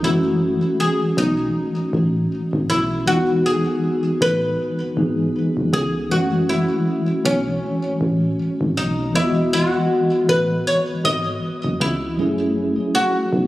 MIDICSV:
0, 0, Header, 1, 4, 480
1, 0, Start_track
1, 0, Tempo, 759494
1, 18, Time_signature, 4, 2, 24, 8
1, 8514, End_track
2, 0, Start_track
2, 0, Title_t, "Oud"
2, 0, Program_c, 0, 24
2, 26, Note_on_c, 0, 64, 90
2, 503, Note_off_c, 0, 64, 0
2, 506, Note_on_c, 0, 68, 92
2, 746, Note_on_c, 0, 63, 90
2, 749, Note_off_c, 0, 68, 0
2, 1705, Note_on_c, 0, 64, 92
2, 1730, Note_off_c, 0, 63, 0
2, 1941, Note_off_c, 0, 64, 0
2, 1943, Note_on_c, 0, 66, 97
2, 2164, Note_off_c, 0, 66, 0
2, 2186, Note_on_c, 0, 68, 98
2, 2637, Note_off_c, 0, 68, 0
2, 2666, Note_on_c, 0, 71, 104
2, 3622, Note_off_c, 0, 71, 0
2, 3624, Note_on_c, 0, 68, 93
2, 3845, Note_off_c, 0, 68, 0
2, 3864, Note_on_c, 0, 66, 98
2, 4104, Note_on_c, 0, 64, 97
2, 4108, Note_off_c, 0, 66, 0
2, 4582, Note_off_c, 0, 64, 0
2, 4585, Note_on_c, 0, 61, 100
2, 5542, Note_off_c, 0, 61, 0
2, 5545, Note_on_c, 0, 63, 88
2, 5783, Note_off_c, 0, 63, 0
2, 5786, Note_on_c, 0, 64, 96
2, 6024, Note_on_c, 0, 66, 104
2, 6029, Note_off_c, 0, 64, 0
2, 6501, Note_off_c, 0, 66, 0
2, 6504, Note_on_c, 0, 71, 101
2, 6742, Note_off_c, 0, 71, 0
2, 6745, Note_on_c, 0, 73, 107
2, 6809, Note_off_c, 0, 73, 0
2, 6983, Note_on_c, 0, 75, 111
2, 7435, Note_off_c, 0, 75, 0
2, 7465, Note_on_c, 0, 64, 89
2, 7916, Note_off_c, 0, 64, 0
2, 8183, Note_on_c, 0, 66, 99
2, 8514, Note_off_c, 0, 66, 0
2, 8514, End_track
3, 0, Start_track
3, 0, Title_t, "Tine electric piano"
3, 0, Program_c, 1, 4
3, 0, Control_c, 1, 64, 127
3, 13, Note_on_c, 1, 52, 68
3, 18, Note_on_c, 1, 56, 59
3, 23, Note_on_c, 1, 57, 61
3, 27, Control_c, 1, 64, 0
3, 27, Note_on_c, 1, 61, 63
3, 33, Note_on_c, 1, 66, 77
3, 151, Control_c, 1, 64, 127
3, 1910, Note_off_c, 1, 52, 0
3, 1912, Note_off_c, 1, 56, 0
3, 1915, Note_off_c, 1, 57, 0
3, 1917, Note_off_c, 1, 61, 0
3, 1920, Note_off_c, 1, 66, 0
3, 1933, Note_on_c, 1, 52, 67
3, 1938, Note_on_c, 1, 56, 62
3, 1942, Note_on_c, 1, 59, 62
3, 1946, Control_c, 1, 64, 0
3, 1948, Note_on_c, 1, 63, 65
3, 1952, Note_on_c, 1, 65, 59
3, 1993, Note_off_c, 1, 65, 0
3, 1993, Note_on_c, 1, 66, 71
3, 2048, Control_c, 1, 64, 127
3, 3111, Note_off_c, 1, 52, 0
3, 3114, Note_off_c, 1, 56, 0
3, 3116, Note_off_c, 1, 59, 0
3, 3119, Note_off_c, 1, 63, 0
3, 3139, Note_on_c, 1, 52, 55
3, 3141, Note_on_c, 1, 56, 48
3, 3142, Note_off_c, 1, 66, 0
3, 3143, Note_on_c, 1, 59, 50
3, 3146, Note_on_c, 1, 63, 47
3, 3148, Note_on_c, 1, 68, 62
3, 3847, Note_off_c, 1, 52, 0
3, 3852, Note_off_c, 1, 56, 0
3, 3854, Note_on_c, 1, 52, 68
3, 3859, Note_on_c, 1, 56, 64
3, 3860, Note_off_c, 1, 59, 0
3, 3862, Note_off_c, 1, 63, 0
3, 3863, Note_off_c, 1, 68, 0
3, 3864, Note_on_c, 1, 57, 62
3, 3865, Control_c, 1, 64, 0
3, 3869, Note_on_c, 1, 61, 63
3, 3874, Note_on_c, 1, 66, 76
3, 3990, Control_c, 1, 64, 127
3, 5751, Note_off_c, 1, 52, 0
3, 5753, Note_off_c, 1, 56, 0
3, 5756, Note_off_c, 1, 57, 0
3, 5758, Note_off_c, 1, 61, 0
3, 5760, Note_off_c, 1, 66, 0
3, 5773, Note_on_c, 1, 52, 65
3, 5778, Note_on_c, 1, 56, 61
3, 5783, Note_on_c, 1, 59, 64
3, 5786, Control_c, 1, 64, 0
3, 5787, Note_on_c, 1, 75, 62
3, 5792, Note_on_c, 1, 65, 59
3, 5833, Note_off_c, 1, 65, 0
3, 5833, Note_on_c, 1, 66, 76
3, 5878, Control_c, 1, 64, 127
3, 7670, Note_off_c, 1, 52, 0
3, 7673, Note_off_c, 1, 56, 0
3, 7675, Note_off_c, 1, 59, 0
3, 7677, Note_off_c, 1, 75, 0
3, 7693, Note_on_c, 1, 54, 67
3, 7698, Note_on_c, 1, 56, 49
3, 7700, Note_off_c, 1, 66, 0
3, 7703, Note_on_c, 1, 61, 61
3, 7707, Control_c, 1, 64, 0
3, 7708, Note_on_c, 1, 64, 60
3, 7712, Note_on_c, 1, 68, 74
3, 7739, Note_on_c, 1, 57, 65
3, 7746, Note_off_c, 1, 56, 0
3, 7800, Control_c, 1, 64, 127
3, 8514, Note_off_c, 1, 54, 0
3, 8514, Note_off_c, 1, 57, 0
3, 8514, Note_off_c, 1, 61, 0
3, 8514, Note_off_c, 1, 64, 0
3, 8514, Note_off_c, 1, 68, 0
3, 8514, End_track
4, 0, Start_track
4, 0, Title_t, "FM bass"
4, 0, Program_c, 2, 39
4, 21, Note_on_c, 2, 30, 113
4, 373, Note_off_c, 2, 30, 0
4, 741, Note_on_c, 2, 35, 91
4, 958, Note_off_c, 2, 35, 0
4, 1120, Note_on_c, 2, 33, 49
4, 1160, Note_off_c, 2, 33, 0
4, 1221, Note_on_c, 2, 33, 100
4, 1438, Note_off_c, 2, 33, 0
4, 1600, Note_on_c, 2, 32, 99
4, 1701, Note_on_c, 2, 35, 93
4, 1710, Note_off_c, 2, 32, 0
4, 1941, Note_on_c, 2, 28, 107
4, 1951, Note_off_c, 2, 35, 0
4, 2294, Note_off_c, 2, 28, 0
4, 2661, Note_on_c, 2, 33, 90
4, 2878, Note_off_c, 2, 33, 0
4, 3040, Note_on_c, 2, 32, 52
4, 3080, Note_off_c, 2, 32, 0
4, 3141, Note_on_c, 2, 32, 96
4, 3358, Note_off_c, 2, 32, 0
4, 3519, Note_on_c, 2, 30, 93
4, 3610, Note_off_c, 2, 30, 0
4, 3621, Note_on_c, 2, 37, 96
4, 3859, Note_on_c, 2, 30, 118
4, 3869, Note_off_c, 2, 37, 0
4, 4213, Note_off_c, 2, 30, 0
4, 4580, Note_on_c, 2, 35, 90
4, 4798, Note_off_c, 2, 35, 0
4, 4960, Note_on_c, 2, 33, 50
4, 5000, Note_off_c, 2, 33, 0
4, 5061, Note_on_c, 2, 33, 97
4, 5278, Note_off_c, 2, 33, 0
4, 5440, Note_on_c, 2, 32, 94
4, 5540, Note_on_c, 2, 35, 91
4, 5549, Note_off_c, 2, 32, 0
4, 5781, Note_on_c, 2, 28, 117
4, 5790, Note_off_c, 2, 35, 0
4, 6133, Note_off_c, 2, 28, 0
4, 6502, Note_on_c, 2, 33, 91
4, 6718, Note_off_c, 2, 33, 0
4, 6880, Note_on_c, 2, 32, 50
4, 6920, Note_off_c, 2, 32, 0
4, 6980, Note_on_c, 2, 32, 95
4, 7198, Note_off_c, 2, 32, 0
4, 7360, Note_on_c, 2, 30, 94
4, 7450, Note_off_c, 2, 30, 0
4, 7461, Note_on_c, 2, 37, 94
4, 7701, Note_on_c, 2, 30, 117
4, 7711, Note_off_c, 2, 37, 0
4, 8053, Note_off_c, 2, 30, 0
4, 8422, Note_on_c, 2, 35, 94
4, 8514, Note_off_c, 2, 35, 0
4, 8514, End_track
0, 0, End_of_file